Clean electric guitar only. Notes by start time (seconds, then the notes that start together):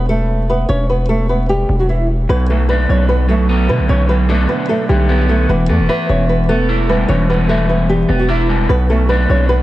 2.29 B2
2.50 F#3
2.70 D4
3.28 F#3
3.49 B3
3.69 D3
3.89 B2
4.09 F#3
4.29 D4
4.90 D3
5.09 B3
5.29 D3
5.49 E3
5.69 B3
5.89 E5
6.49 B3
6.69 E4
6.89 G3
7.09 E3
7.30 B3
7.49 E5
8.09 B3
8.29 E4
8.49 G3
8.69 B2
8.90 F#3
9.10 D4